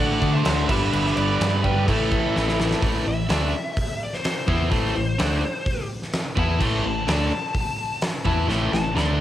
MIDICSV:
0, 0, Header, 1, 7, 480
1, 0, Start_track
1, 0, Key_signature, 0, "minor"
1, 0, Tempo, 472813
1, 943, Time_signature, 4, 2, 24, 8
1, 9346, End_track
2, 0, Start_track
2, 0, Title_t, "Lead electric guitar"
2, 0, Program_c, 0, 29
2, 0, Note_on_c, 0, 78, 108
2, 320, Note_off_c, 0, 78, 0
2, 337, Note_on_c, 0, 76, 113
2, 692, Note_off_c, 0, 76, 0
2, 704, Note_on_c, 0, 76, 110
2, 1179, Note_off_c, 0, 76, 0
2, 1183, Note_on_c, 0, 74, 84
2, 1678, Note_on_c, 0, 71, 81
2, 1679, Note_off_c, 0, 74, 0
2, 1919, Note_off_c, 0, 71, 0
2, 1928, Note_on_c, 0, 69, 80
2, 2598, Note_off_c, 0, 69, 0
2, 3126, Note_on_c, 0, 76, 102
2, 4049, Note_off_c, 0, 76, 0
2, 4094, Note_on_c, 0, 74, 83
2, 4198, Note_off_c, 0, 74, 0
2, 4209, Note_on_c, 0, 72, 88
2, 4549, Note_off_c, 0, 72, 0
2, 4567, Note_on_c, 0, 72, 98
2, 5957, Note_off_c, 0, 72, 0
2, 6489, Note_on_c, 0, 81, 99
2, 6711, Note_off_c, 0, 81, 0
2, 6726, Note_on_c, 0, 84, 96
2, 6949, Note_off_c, 0, 84, 0
2, 6979, Note_on_c, 0, 81, 101
2, 7185, Note_off_c, 0, 81, 0
2, 7197, Note_on_c, 0, 81, 106
2, 8120, Note_off_c, 0, 81, 0
2, 8389, Note_on_c, 0, 81, 91
2, 8608, Note_off_c, 0, 81, 0
2, 8612, Note_on_c, 0, 84, 106
2, 8848, Note_off_c, 0, 84, 0
2, 8864, Note_on_c, 0, 81, 102
2, 9087, Note_off_c, 0, 81, 0
2, 9091, Note_on_c, 0, 84, 114
2, 9346, Note_off_c, 0, 84, 0
2, 9346, End_track
3, 0, Start_track
3, 0, Title_t, "Lead electric guitar"
3, 0, Program_c, 1, 29
3, 0, Note_on_c, 1, 74, 88
3, 320, Note_off_c, 1, 74, 0
3, 366, Note_on_c, 1, 72, 80
3, 690, Note_off_c, 1, 72, 0
3, 703, Note_on_c, 1, 71, 87
3, 1150, Note_off_c, 1, 71, 0
3, 1193, Note_on_c, 1, 71, 84
3, 1636, Note_off_c, 1, 71, 0
3, 1660, Note_on_c, 1, 67, 73
3, 1886, Note_off_c, 1, 67, 0
3, 1903, Note_on_c, 1, 64, 63
3, 2585, Note_off_c, 1, 64, 0
3, 9346, End_track
4, 0, Start_track
4, 0, Title_t, "Distorted electric guitar"
4, 0, Program_c, 2, 30
4, 0, Note_on_c, 2, 50, 98
4, 0, Note_on_c, 2, 57, 108
4, 0, Note_on_c, 2, 62, 114
4, 190, Note_off_c, 2, 62, 0
4, 200, Note_off_c, 2, 50, 0
4, 202, Note_on_c, 2, 62, 93
4, 209, Note_off_c, 2, 57, 0
4, 225, Note_on_c, 2, 57, 84
4, 236, Note_on_c, 2, 50, 69
4, 434, Note_off_c, 2, 50, 0
4, 438, Note_off_c, 2, 62, 0
4, 446, Note_on_c, 2, 50, 85
4, 450, Note_off_c, 2, 57, 0
4, 464, Note_on_c, 2, 57, 79
4, 482, Note_on_c, 2, 62, 97
4, 678, Note_on_c, 2, 43, 90
4, 680, Note_off_c, 2, 50, 0
4, 689, Note_off_c, 2, 57, 0
4, 698, Note_off_c, 2, 62, 0
4, 698, Note_on_c, 2, 50, 86
4, 714, Note_on_c, 2, 55, 95
4, 1878, Note_off_c, 2, 43, 0
4, 1884, Note_off_c, 2, 50, 0
4, 1888, Note_on_c, 2, 45, 97
4, 1897, Note_off_c, 2, 55, 0
4, 1912, Note_on_c, 2, 52, 101
4, 1923, Note_on_c, 2, 57, 104
4, 2844, Note_off_c, 2, 45, 0
4, 2856, Note_off_c, 2, 52, 0
4, 2857, Note_on_c, 2, 45, 94
4, 2861, Note_off_c, 2, 57, 0
4, 2869, Note_on_c, 2, 52, 110
4, 2876, Note_on_c, 2, 57, 118
4, 3095, Note_off_c, 2, 45, 0
4, 3101, Note_off_c, 2, 52, 0
4, 3105, Note_off_c, 2, 57, 0
4, 3110, Note_on_c, 2, 45, 61
4, 3113, Note_on_c, 2, 52, 79
4, 3301, Note_off_c, 2, 45, 0
4, 3302, Note_off_c, 2, 52, 0
4, 3341, Note_on_c, 2, 50, 98
4, 3348, Note_on_c, 2, 57, 106
4, 3353, Note_on_c, 2, 62, 122
4, 3578, Note_off_c, 2, 50, 0
4, 3581, Note_off_c, 2, 57, 0
4, 3584, Note_off_c, 2, 62, 0
4, 4536, Note_on_c, 2, 52, 81
4, 4541, Note_on_c, 2, 59, 85
4, 4546, Note_on_c, 2, 64, 101
4, 4766, Note_off_c, 2, 52, 0
4, 4770, Note_on_c, 2, 45, 101
4, 4778, Note_off_c, 2, 59, 0
4, 4780, Note_off_c, 2, 64, 0
4, 4782, Note_on_c, 2, 52, 108
4, 4787, Note_on_c, 2, 57, 122
4, 5008, Note_off_c, 2, 45, 0
4, 5014, Note_off_c, 2, 52, 0
4, 5020, Note_on_c, 2, 45, 64
4, 5021, Note_off_c, 2, 57, 0
4, 5026, Note_on_c, 2, 52, 79
4, 5217, Note_off_c, 2, 45, 0
4, 5219, Note_off_c, 2, 52, 0
4, 5265, Note_on_c, 2, 50, 91
4, 5269, Note_on_c, 2, 57, 103
4, 5273, Note_on_c, 2, 62, 115
4, 5500, Note_off_c, 2, 50, 0
4, 5502, Note_off_c, 2, 57, 0
4, 5503, Note_off_c, 2, 62, 0
4, 6456, Note_on_c, 2, 52, 76
4, 6464, Note_on_c, 2, 59, 93
4, 6474, Note_on_c, 2, 64, 95
4, 6695, Note_off_c, 2, 52, 0
4, 6698, Note_off_c, 2, 59, 0
4, 6702, Note_on_c, 2, 45, 101
4, 6703, Note_off_c, 2, 64, 0
4, 6709, Note_on_c, 2, 52, 123
4, 6720, Note_on_c, 2, 57, 127
4, 6937, Note_off_c, 2, 45, 0
4, 6941, Note_off_c, 2, 52, 0
4, 6946, Note_off_c, 2, 57, 0
4, 6949, Note_on_c, 2, 45, 67
4, 6954, Note_on_c, 2, 52, 67
4, 7139, Note_off_c, 2, 45, 0
4, 7142, Note_off_c, 2, 52, 0
4, 7177, Note_on_c, 2, 50, 107
4, 7184, Note_on_c, 2, 57, 102
4, 7189, Note_on_c, 2, 62, 116
4, 7414, Note_off_c, 2, 50, 0
4, 7417, Note_off_c, 2, 57, 0
4, 7420, Note_off_c, 2, 62, 0
4, 8375, Note_on_c, 2, 52, 83
4, 8381, Note_on_c, 2, 59, 88
4, 8387, Note_on_c, 2, 64, 92
4, 8605, Note_off_c, 2, 52, 0
4, 8610, Note_on_c, 2, 45, 107
4, 8613, Note_off_c, 2, 59, 0
4, 8616, Note_off_c, 2, 64, 0
4, 8617, Note_on_c, 2, 52, 112
4, 8623, Note_on_c, 2, 57, 112
4, 8840, Note_off_c, 2, 45, 0
4, 8842, Note_off_c, 2, 52, 0
4, 8852, Note_on_c, 2, 45, 62
4, 8854, Note_off_c, 2, 57, 0
4, 8854, Note_on_c, 2, 52, 74
4, 9047, Note_off_c, 2, 45, 0
4, 9048, Note_off_c, 2, 52, 0
4, 9085, Note_on_c, 2, 50, 104
4, 9095, Note_on_c, 2, 57, 101
4, 9097, Note_on_c, 2, 62, 102
4, 9323, Note_off_c, 2, 50, 0
4, 9329, Note_off_c, 2, 57, 0
4, 9330, Note_off_c, 2, 62, 0
4, 9346, End_track
5, 0, Start_track
5, 0, Title_t, "Distorted electric guitar"
5, 0, Program_c, 3, 30
5, 0, Note_on_c, 3, 50, 95
5, 0, Note_on_c, 3, 57, 98
5, 0, Note_on_c, 3, 62, 104
5, 444, Note_off_c, 3, 50, 0
5, 452, Note_off_c, 3, 57, 0
5, 454, Note_off_c, 3, 62, 0
5, 935, Note_on_c, 3, 43, 100
5, 944, Note_on_c, 3, 50, 108
5, 953, Note_on_c, 3, 55, 123
5, 1409, Note_off_c, 3, 43, 0
5, 1413, Note_off_c, 3, 50, 0
5, 1419, Note_off_c, 3, 55, 0
5, 1421, Note_on_c, 3, 43, 74
5, 1425, Note_on_c, 3, 50, 86
5, 1431, Note_on_c, 3, 55, 99
5, 1649, Note_off_c, 3, 43, 0
5, 1657, Note_off_c, 3, 50, 0
5, 1659, Note_off_c, 3, 55, 0
5, 1661, Note_on_c, 3, 43, 90
5, 1669, Note_on_c, 3, 50, 82
5, 1671, Note_on_c, 3, 55, 88
5, 1889, Note_off_c, 3, 43, 0
5, 1893, Note_off_c, 3, 50, 0
5, 1894, Note_off_c, 3, 55, 0
5, 2379, Note_on_c, 3, 45, 79
5, 2387, Note_on_c, 3, 52, 91
5, 2394, Note_on_c, 3, 57, 89
5, 2604, Note_off_c, 3, 45, 0
5, 2614, Note_off_c, 3, 52, 0
5, 2616, Note_on_c, 3, 45, 77
5, 2622, Note_off_c, 3, 57, 0
5, 2626, Note_on_c, 3, 52, 85
5, 2634, Note_on_c, 3, 57, 90
5, 2847, Note_off_c, 3, 45, 0
5, 2852, Note_off_c, 3, 52, 0
5, 2857, Note_off_c, 3, 57, 0
5, 9346, End_track
6, 0, Start_track
6, 0, Title_t, "Fingered electric bass"
6, 0, Program_c, 4, 33
6, 0, Note_on_c, 4, 33, 99
6, 172, Note_off_c, 4, 33, 0
6, 225, Note_on_c, 4, 50, 95
6, 414, Note_off_c, 4, 50, 0
6, 467, Note_on_c, 4, 38, 101
6, 656, Note_off_c, 4, 38, 0
6, 699, Note_on_c, 4, 31, 101
6, 891, Note_off_c, 4, 31, 0
6, 945, Note_on_c, 4, 31, 94
6, 1134, Note_off_c, 4, 31, 0
6, 1180, Note_on_c, 4, 31, 87
6, 1372, Note_off_c, 4, 31, 0
6, 1423, Note_on_c, 4, 43, 94
6, 1910, Note_on_c, 4, 33, 102
6, 1925, Note_off_c, 4, 43, 0
6, 2289, Note_off_c, 4, 33, 0
6, 2393, Note_on_c, 4, 33, 97
6, 2770, Note_off_c, 4, 33, 0
6, 2870, Note_on_c, 4, 33, 97
6, 3092, Note_off_c, 4, 33, 0
6, 3108, Note_on_c, 4, 33, 87
6, 3331, Note_off_c, 4, 33, 0
6, 3349, Note_on_c, 4, 38, 93
6, 3572, Note_off_c, 4, 38, 0
6, 4549, Note_on_c, 4, 40, 102
6, 4772, Note_off_c, 4, 40, 0
6, 4789, Note_on_c, 4, 33, 96
6, 5012, Note_off_c, 4, 33, 0
6, 5032, Note_on_c, 4, 33, 88
6, 5254, Note_off_c, 4, 33, 0
6, 5277, Note_on_c, 4, 38, 99
6, 5496, Note_off_c, 4, 38, 0
6, 6467, Note_on_c, 4, 40, 106
6, 6690, Note_off_c, 4, 40, 0
6, 6705, Note_on_c, 4, 33, 94
6, 6929, Note_off_c, 4, 33, 0
6, 6949, Note_on_c, 4, 33, 81
6, 7170, Note_off_c, 4, 33, 0
6, 7185, Note_on_c, 4, 38, 97
6, 7408, Note_off_c, 4, 38, 0
6, 8375, Note_on_c, 4, 40, 102
6, 8601, Note_off_c, 4, 40, 0
6, 8606, Note_on_c, 4, 33, 103
6, 8835, Note_off_c, 4, 33, 0
6, 8851, Note_on_c, 4, 33, 85
6, 9077, Note_off_c, 4, 33, 0
6, 9085, Note_on_c, 4, 38, 91
6, 9313, Note_off_c, 4, 38, 0
6, 9346, End_track
7, 0, Start_track
7, 0, Title_t, "Drums"
7, 220, Note_on_c, 9, 49, 70
7, 222, Note_on_c, 9, 36, 85
7, 322, Note_off_c, 9, 49, 0
7, 323, Note_off_c, 9, 36, 0
7, 458, Note_on_c, 9, 49, 93
7, 466, Note_on_c, 9, 38, 114
7, 559, Note_off_c, 9, 49, 0
7, 567, Note_off_c, 9, 38, 0
7, 702, Note_on_c, 9, 36, 115
7, 703, Note_on_c, 9, 49, 107
7, 803, Note_off_c, 9, 36, 0
7, 805, Note_off_c, 9, 49, 0
7, 947, Note_on_c, 9, 49, 91
7, 1049, Note_off_c, 9, 49, 0
7, 1077, Note_on_c, 9, 38, 34
7, 1179, Note_off_c, 9, 38, 0
7, 1186, Note_on_c, 9, 49, 68
7, 1288, Note_off_c, 9, 49, 0
7, 1431, Note_on_c, 9, 49, 85
7, 1439, Note_on_c, 9, 38, 127
7, 1533, Note_off_c, 9, 49, 0
7, 1541, Note_off_c, 9, 38, 0
7, 1666, Note_on_c, 9, 49, 60
7, 1667, Note_on_c, 9, 36, 82
7, 1767, Note_off_c, 9, 49, 0
7, 1769, Note_off_c, 9, 36, 0
7, 1909, Note_on_c, 9, 36, 89
7, 1913, Note_on_c, 9, 49, 90
7, 2011, Note_off_c, 9, 36, 0
7, 2014, Note_off_c, 9, 49, 0
7, 2148, Note_on_c, 9, 49, 62
7, 2149, Note_on_c, 9, 36, 90
7, 2250, Note_off_c, 9, 49, 0
7, 2251, Note_off_c, 9, 36, 0
7, 2400, Note_on_c, 9, 38, 63
7, 2501, Note_off_c, 9, 38, 0
7, 2520, Note_on_c, 9, 38, 67
7, 2621, Note_off_c, 9, 38, 0
7, 2637, Note_on_c, 9, 38, 99
7, 2739, Note_off_c, 9, 38, 0
7, 2751, Note_on_c, 9, 38, 91
7, 2853, Note_off_c, 9, 38, 0
7, 2868, Note_on_c, 9, 36, 120
7, 2869, Note_on_c, 9, 46, 68
7, 2969, Note_off_c, 9, 36, 0
7, 2970, Note_off_c, 9, 46, 0
7, 3344, Note_on_c, 9, 46, 65
7, 3352, Note_on_c, 9, 38, 120
7, 3446, Note_off_c, 9, 46, 0
7, 3454, Note_off_c, 9, 38, 0
7, 3824, Note_on_c, 9, 46, 68
7, 3827, Note_on_c, 9, 36, 104
7, 3926, Note_off_c, 9, 46, 0
7, 3929, Note_off_c, 9, 36, 0
7, 4194, Note_on_c, 9, 38, 36
7, 4295, Note_off_c, 9, 38, 0
7, 4307, Note_on_c, 9, 46, 66
7, 4315, Note_on_c, 9, 38, 118
7, 4409, Note_off_c, 9, 46, 0
7, 4417, Note_off_c, 9, 38, 0
7, 4548, Note_on_c, 9, 36, 105
7, 4649, Note_off_c, 9, 36, 0
7, 4788, Note_on_c, 9, 36, 115
7, 4788, Note_on_c, 9, 46, 66
7, 4890, Note_off_c, 9, 36, 0
7, 4890, Note_off_c, 9, 46, 0
7, 5268, Note_on_c, 9, 46, 64
7, 5277, Note_on_c, 9, 38, 124
7, 5370, Note_off_c, 9, 46, 0
7, 5378, Note_off_c, 9, 38, 0
7, 5748, Note_on_c, 9, 36, 106
7, 5749, Note_on_c, 9, 46, 62
7, 5849, Note_off_c, 9, 36, 0
7, 5850, Note_off_c, 9, 46, 0
7, 6112, Note_on_c, 9, 38, 37
7, 6213, Note_off_c, 9, 38, 0
7, 6221, Note_on_c, 9, 46, 59
7, 6230, Note_on_c, 9, 38, 109
7, 6323, Note_off_c, 9, 46, 0
7, 6331, Note_off_c, 9, 38, 0
7, 6467, Note_on_c, 9, 36, 108
7, 6568, Note_off_c, 9, 36, 0
7, 6706, Note_on_c, 9, 57, 113
7, 6707, Note_on_c, 9, 36, 112
7, 6807, Note_off_c, 9, 57, 0
7, 6808, Note_off_c, 9, 36, 0
7, 7187, Note_on_c, 9, 46, 69
7, 7195, Note_on_c, 9, 38, 127
7, 7289, Note_off_c, 9, 46, 0
7, 7297, Note_off_c, 9, 38, 0
7, 7662, Note_on_c, 9, 36, 105
7, 7664, Note_on_c, 9, 46, 73
7, 7763, Note_off_c, 9, 36, 0
7, 7766, Note_off_c, 9, 46, 0
7, 8136, Note_on_c, 9, 46, 61
7, 8144, Note_on_c, 9, 38, 117
7, 8237, Note_off_c, 9, 46, 0
7, 8245, Note_off_c, 9, 38, 0
7, 8378, Note_on_c, 9, 36, 107
7, 8480, Note_off_c, 9, 36, 0
7, 8624, Note_on_c, 9, 38, 67
7, 8726, Note_off_c, 9, 38, 0
7, 8866, Note_on_c, 9, 38, 80
7, 8967, Note_off_c, 9, 38, 0
7, 9103, Note_on_c, 9, 38, 78
7, 9205, Note_off_c, 9, 38, 0
7, 9346, End_track
0, 0, End_of_file